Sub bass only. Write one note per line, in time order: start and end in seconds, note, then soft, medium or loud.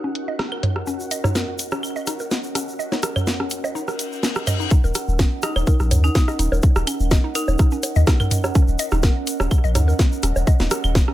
4.84 4.92 D#1 loud
5.08 5.24 D#1 loud
5.56 5.64 D#1 medium
5.80 5.93 A#1 medium
5.91 6.09 D#2 medium
6.39 6.48 D#1 medium
6.52 6.60 D#1 medium
6.76 6.84 D#1 loud
7.00 7.16 D#1 loud
7.48 7.56 D#1 medium
7.96 8.04 D#2 medium
8.68 8.76 D#1 loud
8.92 9.08 D#1 loud
9.40 9.48 D#1 medium
9.64 9.77 A#1 medium
9.75 9.93 D#2 medium
10.23 10.32 D#1 medium
10.36 10.44 D#1 medium
10.60 10.68 D#1 loud
10.84 11.00 D#1 loud